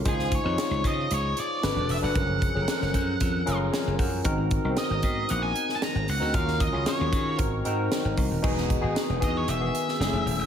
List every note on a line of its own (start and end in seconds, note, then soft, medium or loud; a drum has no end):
0.05 0.38 C#2 loud
0.05 0.42 D#4 medium
0.05 0.43 F4 medium
0.05 0.43 G#4 medium
0.05 0.34 G#4 medium
0.05 0.43 C5 medium
0.05 kick loud
0.05 closed hi-hat medium
0.19 snare soft
0.32 0.87 C#5 medium
0.32 kick medium
0.32 closed hi-hat medium
0.44 0.56 F2 medium
0.44 1.44 D#4 medium
0.44 1.44 F4 medium
0.44 1.44 G#4 medium
0.44 1.45 C#5 medium
0.58 snare loud
0.58 closed hi-hat loud
0.71 0.82 C#2 medium
0.84 1.06 C#3 loud
0.84 1.13 D#5 medium
0.84 kick medium
0.84 closed hi-hat medium
1.11 1.33 C#2 medium
1.11 1.39 C#5 medium
1.11 closed hi-hat medium
1.37 1.91 D5 medium
1.37 closed hi-hat medium
1.62 1.74 G1 medium
1.62 2.00 D4 medium
1.62 2.00 F#4 medium
1.62 2.00 A4 medium
1.62 2.01 B4 medium
1.62 snare medium
1.62 closed hi-hat medium
1.76 1.87 E1 medium
1.89 2.00 E1 medium
1.89 1.96 E5 medium
1.89 open hi-hat medium
2.02 2.13 F1 medium
2.02 2.14 D4 medium
2.02 2.15 F#4 medium
2.02 2.15 A4 medium
2.02 2.15 B4 medium
2.02 3.57 F#5 medium
2.14 2.48 F#1 loud
2.14 2.52 F3 medium
2.14 2.52 C#4 medium
2.14 2.53 G#4 medium
2.14 2.53 A#4 medium
2.14 kick loud
2.14 closed hi-hat medium
2.42 kick medium
2.42 closed hi-hat medium
2.54 2.66 F#1 medium
2.54 3.42 F3 medium
2.54 3.42 C#4 medium
2.54 3.42 G#4 medium
2.54 2.62 A4 medium
2.62 3.45 A#4 medium
2.68 snare loud
2.68 closed hi-hat loud
2.82 2.93 F#1 medium
2.82 snare soft
2.94 3.16 F#2 medium
2.94 kick medium
2.94 closed hi-hat medium
3.20 3.43 F2 loud
3.20 kick medium
3.20 closed hi-hat medium
3.46 3.69 F#1 medium
3.46 4.21 C#4 medium
3.46 4.21 F4 medium
3.46 4.21 G#4 medium
3.46 4.21 A#4 medium
3.46 3.71 A#5 medium
3.46 closed hi-hat medium
3.72 3.97 G#5 medium
3.72 snare loud
3.72 closed hi-hat medium
3.87 3.97 F#1 medium
3.99 4.21 F#2 medium
3.99 4.23 F#5 medium
3.99 kick medium
3.99 open hi-hat medium
4.24 4.58 G#1 loud
4.24 4.62 C4 medium
4.24 4.62 D#4 medium
4.24 4.62 F#4 medium
4.24 4.62 A#4 medium
4.24 kick loud
4.24 closed hi-hat medium
4.51 kick medium
4.51 closed hi-hat medium
4.64 4.75 C2 medium
4.64 4.70 B3 medium
4.64 5.64 D#4 medium
4.64 5.64 F#4 medium
4.64 5.64 A#4 medium
4.70 5.67 C4 medium
4.77 5.32 D#5 medium
4.77 snare loud
4.77 closed hi-hat medium
4.90 5.01 G#1 medium
5.03 5.25 G#2 loud
5.03 kick medium
5.03 closed hi-hat medium
5.29 5.52 A#1 loud
5.29 5.42 F#5 medium
5.29 closed hi-hat medium
5.42 5.76 G#5 medium
5.56 closed hi-hat medium
5.69 snare soft
5.75 5.82 A5 medium
5.82 6.07 A#5 medium
5.82 snare medium
5.82 closed hi-hat medium
5.95 6.06 G#1 medium
6.08 6.19 C#2 medium
6.08 6.34 F#5 medium
6.08 open hi-hat medium
6.20 6.32 D2 medium
6.20 6.33 C4 medium
6.20 6.33 D#4 medium
6.20 6.33 F#4 medium
6.20 6.33 A#4 medium
6.33 6.67 D#2 loud
6.33 6.71 C#4 medium
6.33 6.71 F4 medium
6.33 6.72 F#4 medium
6.33 6.72 A#4 medium
6.33 6.62 F5 loud
6.33 kick loud
6.33 closed hi-hat medium
6.48 snare soft
6.60 6.85 D#5 medium
6.60 kick medium
6.60 closed hi-hat medium
6.72 6.85 C#2 medium
6.72 7.39 C#4 medium
6.72 7.39 F4 medium
6.72 7.37 F#4 medium
6.72 7.39 G#4 medium
6.86 7.36 C#5 medium
6.86 snare loud
6.86 closed hi-hat medium
7.01 7.11 D#2 medium
7.12 7.41 D#3 loud
7.12 kick medium
7.12 closed hi-hat medium
7.37 7.61 G#1 loud
7.37 7.63 C4 medium
7.37 7.63 D#4 medium
7.37 7.63 F#4 medium
7.37 7.64 A#4 medium
7.37 kick medium
7.37 closed hi-hat medium
7.65 7.87 G#2 medium
7.65 8.39 C4 medium
7.65 8.40 D#4 medium
7.65 8.40 F#4 medium
7.65 8.40 A#4 medium
7.65 closed hi-hat medium
7.92 snare medium
7.92 closed hi-hat medium
8.05 8.15 G#1 medium
8.17 8.28 C2 medium
8.17 kick medium
8.17 open hi-hat medium
8.31 8.42 D#1 medium
8.42 8.76 E1 loud
8.42 8.80 B3 medium
8.42 8.80 D#4 medium
8.42 8.80 F#4 medium
8.42 8.81 G#4 medium
8.42 kick loud
8.42 crash medium
8.58 snare soft
8.70 kick medium
8.70 closed hi-hat medium
8.81 8.94 G#1 medium
8.81 9.18 B3 medium
8.81 9.19 D#4 medium
8.81 9.19 F#4 medium
8.81 9.20 G#4 medium
8.96 snare loud
8.96 closed hi-hat medium
9.09 9.24 E1 medium
9.19 9.44 E2 loud
9.19 9.58 B3 medium
9.19 9.58 D#4 medium
9.19 9.58 F#4 medium
9.19 9.59 G#4 medium
9.19 kick medium
9.19 closed hi-hat medium
9.24 9.37 D#5 medium
9.37 9.50 C#5 medium
9.48 9.70 E1 medium
9.48 10.46 E5 medium
9.48 closed hi-hat medium
9.60 9.98 D#3 medium
9.60 9.98 B3 medium
9.60 9.98 F#4 medium
9.60 9.99 G#4 medium
9.75 closed hi-hat medium
9.88 snare soft
10.00 10.11 F#1 medium
10.00 10.06 G#3 medium
10.00 10.46 C#4 medium
10.00 10.46 E4 medium
10.00 10.46 G#4 medium
10.00 snare medium
10.00 closed hi-hat medium
10.06 10.46 A3 medium
10.12 10.24 E1 medium
10.25 10.39 D#1 medium
10.25 open hi-hat medium
10.39 10.46 E1 medium